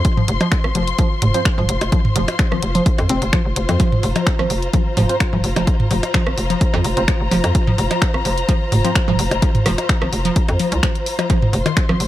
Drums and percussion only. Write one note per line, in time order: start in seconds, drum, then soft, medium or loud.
0.05 kick loud
0.05 closed hi-hat medium
0.17 mid tom medium
0.28 closed hi-hat loud
0.41 closed hi-hat soft
0.41 percussion blips medium
0.52 finger snap medium
0.52 kick loud
0.52 closed hi-hat soft
0.64 cross-stick medium
0.75 closed hi-hat loud
0.87 closed hi-hat soft
0.98 kick loud
0.98 closed hi-hat medium
1.22 closed hi-hat loud
1.22 mid tom medium
1.34 closed hi-hat soft
1.45 finger snap loud
1.45 kick loud
1.45 closed hi-hat medium
1.58 mid tom medium
1.69 closed hi-hat loud
1.81 closed hi-hat soft
1.81 percussion blips medium
1.92 kick loud
1.92 closed hi-hat medium
2.05 mid tom medium
2.16 closed hi-hat medium
2.28 closed hi-hat soft
2.28 percussion blips medium
2.39 finger snap medium
2.39 kick loud
2.39 closed hi-hat soft
2.52 cross-stick medium
2.62 closed hi-hat loud
2.75 closed hi-hat soft
2.86 kick loud
2.86 closed hi-hat medium
2.98 closed hi-hat soft
2.98 percussion blips medium
3.09 closed hi-hat loud
3.22 closed hi-hat soft
3.33 finger snap medium
3.33 kick loud
3.33 closed hi-hat medium
3.56 closed hi-hat loud
3.69 closed hi-hat soft
3.69 percussion blips medium
3.80 kick loud
3.80 closed hi-hat medium
3.92 mid tom medium
4.03 open hi-hat medium
4.16 closed hi-hat soft
4.16 percussion blips medium
4.27 finger snap medium
4.27 kick loud
4.27 closed hi-hat soft
4.39 cross-stick medium
4.50 open hi-hat medium
4.62 closed hi-hat soft
4.73 kick loud
4.73 closed hi-hat medium
4.97 mid tom medium
4.97 open hi-hat medium
5.09 closed hi-hat soft
5.20 finger snap medium
5.20 kick loud
5.20 closed hi-hat medium
5.33 mid tom medium
5.44 open hi-hat medium
5.56 closed hi-hat soft
5.56 percussion blips medium
5.67 kick loud
5.67 closed hi-hat medium
5.80 mid tom medium
5.91 open hi-hat medium
6.03 closed hi-hat soft
6.03 percussion blips medium
6.14 finger snap medium
6.14 kick loud
6.14 closed hi-hat medium
6.27 cross-stick medium
6.38 open hi-hat medium
6.50 closed hi-hat soft
6.61 kick loud
6.61 closed hi-hat medium
6.74 percussion blips medium
6.84 open hi-hat medium
6.97 closed hi-hat soft
7.08 finger snap medium
7.08 kick loud
7.08 closed hi-hat medium
7.31 open hi-hat medium
7.44 closed hi-hat soft
7.44 percussion blips medium
7.55 kick loud
7.55 closed hi-hat medium
7.67 mid tom medium
7.78 open hi-hat medium
7.91 closed hi-hat soft
7.91 percussion blips medium
8.02 finger snap medium
8.02 kick loud
8.02 closed hi-hat medium
8.14 cross-stick medium
8.25 open hi-hat medium
8.38 closed hi-hat soft
8.49 kick loud
8.49 closed hi-hat medium
8.72 mid tom medium
8.72 open hi-hat medium
8.85 closed hi-hat soft
8.95 finger snap medium
8.95 kick loud
8.95 closed hi-hat medium
9.08 mid tom medium
9.19 open hi-hat medium
9.31 closed hi-hat soft
9.31 percussion blips medium
9.42 kick loud
9.42 closed hi-hat medium
9.55 closed hi-hat soft
9.55 mid tom medium
9.66 cross-stick medium
9.66 open hi-hat medium
9.78 closed hi-hat soft
9.78 percussion blips medium
9.89 finger snap loud
9.89 kick loud
9.89 closed hi-hat medium
10.02 cross-stick medium
10.13 open hi-hat medium
10.25 closed hi-hat soft
10.36 kick loud
10.36 closed hi-hat medium
10.48 closed hi-hat soft
10.48 percussion blips medium
10.59 open hi-hat medium
10.72 closed hi-hat soft
10.83 finger snap medium
10.83 kick loud
10.83 closed hi-hat medium
10.95 closed hi-hat soft
11.06 open hi-hat medium
11.19 closed hi-hat soft
11.19 percussion blips medium
11.30 kick loud
11.30 closed hi-hat medium
11.42 mid tom loud
11.53 open hi-hat medium
11.66 closed hi-hat soft
11.66 percussion blips medium
11.77 finger snap loud
11.77 kick loud
11.77 closed hi-hat medium
11.89 cross-stick medium
12.00 open hi-hat medium